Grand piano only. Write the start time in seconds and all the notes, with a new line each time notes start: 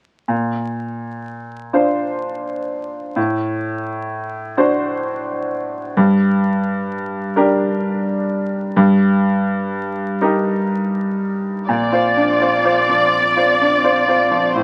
0.28 A#2
1.73 D4 F4 C5
3.16 A2
4.57 D4 F#4 C5
5.97 G2
7.36 D4 G4 A#4
8.76 G2
10.21 D#4 G4 A#4
11.69 A#2
11.92 F4 C5
12.16 D4
12.41 F4 C5
12.65 F4 C5
12.89 F3
13.36 F4 C5
13.61 D4
13.84 F4 C5
14.08 F4 C5
14.31 F3
14.55 A2